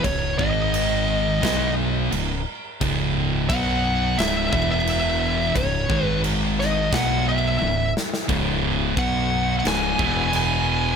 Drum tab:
CC |x---x---x---x---|x---x---x---x---|x---x---x-------|x---x---x---x---|
SD |--------o-------|--------o-------|------o-o-----oo|--------o-------|
T1 |----------------|----------------|------------o---|----------------|
BD |o-o-----o-------|o---o-----o-----|o-o-----o-------|o---o-----o-----|